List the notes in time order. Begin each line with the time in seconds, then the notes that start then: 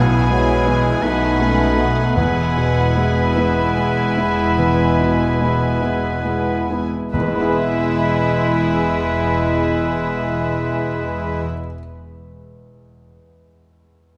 Already playing: B1 B2 B3 E4 G#4 G#5 B5
0.30 F#3 G#3
0.66 E3 G#3 B3 E4
1.02 B1 B2 F#3 A3 D#4 B4 F#5 B5
1.39 G#3 A3 C#4
1.77 A3 B3 D#4
2.16 E1 E2 G#3 B3 E4 B4 F#5 G#5 B5
2.57 B2
2.97 G#3 B3 E4
3.36 G#3 B3 E4 E5
3.77 G#3
4.17 G#3 B3 E4
4.59 E2
5.01 B2
5.41 G#3 B3 E4
5.81 G#3 B3 E4
6.25 G#3
6.71 G#3 B3 E4
7.12 E1 E2 G#3 B3 E4 G#4 B4 E5 B5
7.20 E3
7.28 G#3
7.35 B3
7.42 E4
7.49 B4